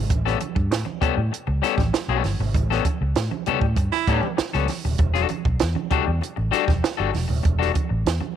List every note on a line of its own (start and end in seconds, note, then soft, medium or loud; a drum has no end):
0.10 0.34 A1 medium
0.10 muted clean electric guitar stroke soft
0.10 kick loud
0.10 closed hi-hat medium
0.10 muted conga soft
0.10 low conga medium
0.25 0.39 G3 medium
0.25 0.40 B3 medium
0.25 0.40 C#4 medium
0.25 0.40 A4 medium
0.25 snare soft
0.25 muted conga soft
0.40 muted clean electric guitar stroke soft
0.40 closed hi-hat medium
0.40 high conga medium
0.55 0.71 G2 medium
0.55 muted clean electric guitar stroke soft
0.55 kick medium
0.71 0.83 A2 loud
0.71 snare loud
0.71 closed hi-hat medium
0.85 muted clean electric guitar stroke medium
0.85 high conga medium
1.01 1.20 G3 medium
1.01 1.17 B3 medium
1.01 1.17 C#4 medium
1.01 1.16 A4 medium
1.01 muted fingered electric bass stroke soft
1.01 kick medium
1.01 closed hi-hat medium
1.01 low conga medium
1.17 1.29 A2 medium
1.17 muted clean electric guitar stroke medium
1.32 muted clean electric guitar stroke medium
1.32 closed hi-hat loud
1.47 1.60 C#2 medium
1.47 muted clean electric guitar stroke medium
1.47 muted conga soft
1.62 1.81 G3 medium
1.62 1.77 B3 medium
1.62 1.77 C#4 medium
1.62 1.76 A4 loud
1.62 snare soft
1.62 closed hi-hat medium
1.77 1.90 A1 medium
1.77 muted clean electric guitar stroke soft
1.77 kick medium
1.77 snare soft
1.77 high conga medium
1.93 muted clean electric guitar stroke soft
1.93 snare loud
1.93 closed hi-hat medium
2.08 2.21 B1 medium
2.08 2.24 G3 medium
2.08 2.24 B3 medium
2.08 2.24 C#4 medium
2.08 2.24 A4 medium
2.08 muted conga soft
2.24 2.36 G1 loud
2.24 muted clean electric guitar stroke soft
2.24 snare soft
2.24 open hi-hat medium
2.24 high conga medium
2.39 2.51 G#1 medium
2.39 muted clean electric guitar stroke soft
2.39 low conga medium
2.54 2.79 A1 medium
2.54 muted clean electric guitar stroke soft
2.54 kick loud
2.54 closed hi-hat medium
2.54 muted conga soft
2.54 low conga medium
2.70 2.84 G3 medium
2.70 2.85 B3 medium
2.70 2.85 C#4 medium
2.70 2.86 A4 medium
2.70 snare soft
2.70 muted conga soft
2.85 muted clean electric guitar stroke soft
2.85 kick medium
2.85 closed hi-hat medium
2.85 high conga medium
3.01 3.13 C#2 medium
3.01 muted clean electric guitar stroke soft
3.15 3.28 A2 loud
3.15 snare loud
3.15 closed hi-hat medium
3.31 muted clean electric guitar stroke soft
3.31 muted conga soft
3.31 high conga medium
3.46 3.65 G3 medium
3.46 3.61 B3 medium
3.46 3.61 C#4 medium
3.46 3.60 A4 medium
3.46 muted fingered electric bass stroke medium
3.46 closed hi-hat medium
3.46 low conga medium
3.61 3.76 A2 medium
3.61 muted clean electric guitar stroke soft
3.61 kick medium
3.76 3.89 G2 loud
3.76 muted clean electric guitar stroke medium
3.76 kick loud
3.76 closed hi-hat medium
3.76 muted conga soft
3.92 4.31 E4 loud
3.92 muted clean electric guitar stroke soft
3.92 snare soft
3.92 muted conga soft
4.07 4.20 A2 loud
4.07 4.27 G3 medium
4.07 4.23 B3 medium
4.07 4.22 C#4 medium
4.07 4.22 A4 medium
4.07 kick medium
4.07 closed hi-hat medium
4.23 muted clean electric guitar stroke soft
4.23 high conga medium
4.37 muted clean electric guitar stroke soft
4.37 muted fingered electric bass stroke soft
4.37 snare loud
4.37 closed hi-hat medium
4.53 4.66 C#2 medium
4.53 4.68 G3 medium
4.53 4.68 B3 medium
4.53 4.68 C#4 medium
4.53 4.69 A4 medium
4.53 snare soft
4.53 muted conga soft
4.53 high conga medium
4.68 muted clean electric guitar stroke soft
4.68 snare soft
4.68 open hi-hat loud
4.68 high conga medium
4.85 4.97 D#1 medium
4.85 muted clean electric guitar stroke soft
4.85 low conga medium
4.98 5.24 E1 medium
4.98 muted clean electric guitar stroke soft
4.98 kick loud
4.98 closed hi-hat medium
4.98 muted conga soft
4.98 low conga medium
5.14 5.28 G3 medium
5.14 5.29 D4 medium
5.14 5.29 F#4 medium
5.14 5.29 A4 medium
5.14 snare soft
5.28 muted clean electric guitar stroke medium
5.28 closed hi-hat medium
5.28 high conga medium
5.45 5.58 B1 medium
5.45 muted clean electric guitar stroke soft
5.45 kick medium
5.59 5.74 E2 loud
5.59 snare loud
5.59 closed hi-hat loud
5.75 muted clean electric guitar stroke soft
5.75 muted conga soft
5.75 high conga medium
5.90 6.10 G3 medium
5.90 6.07 D4 medium
5.90 6.06 F#4 loud
5.90 6.06 A4 loud
5.90 muted fingered electric bass stroke soft
5.90 kick medium
5.90 closed hi-hat medium
5.90 low conga medium
6.07 6.20 E2 medium
6.07 muted clean electric guitar stroke soft
6.21 muted clean electric guitar stroke soft
6.21 closed hi-hat medium
6.21 muted conga soft
6.36 6.50 A1 medium
6.36 muted clean electric guitar stroke soft
6.36 muted conga soft
6.51 6.71 G3 medium
6.51 6.66 D4 medium
6.51 6.66 F#4 loud
6.51 6.66 A4 loud
6.51 snare soft
6.51 closed hi-hat medium
6.67 6.80 E1 medium
6.67 muted clean electric guitar stroke soft
6.67 kick medium
6.67 snare soft
6.67 high conga medium
6.83 muted clean electric guitar stroke soft
6.83 snare loud
6.83 closed hi-hat medium
6.97 7.11 G1 loud
6.97 7.12 G3 medium
6.97 7.12 D4 medium
6.97 7.12 F#4 medium
6.97 7.13 A4 medium
7.13 7.27 E1 loud
7.13 muted clean electric guitar stroke soft
7.13 snare soft
7.13 open hi-hat medium
7.13 high conga medium
7.28 7.42 D#1 medium
7.28 muted clean electric guitar stroke soft
7.28 low conga medium
7.43 7.70 E1 loud
7.43 muted clean electric guitar stroke soft
7.43 kick loud
7.43 closed hi-hat medium
7.43 muted conga soft
7.43 low conga medium
7.59 7.73 G3 medium
7.59 7.73 D4 medium
7.59 7.73 F#4 medium
7.59 7.73 A4 medium
7.59 snare soft
7.74 muted clean electric guitar stroke medium
7.74 kick loud
7.74 closed hi-hat medium
7.74 high conga medium
7.89 8.03 A1 medium
7.89 muted clean electric guitar stroke soft
8.06 8.18 E2 loud
8.06 snare loud
8.06 closed hi-hat loud
8.21 muted clean electric guitar stroke soft
8.21 muted conga soft
8.21 high conga medium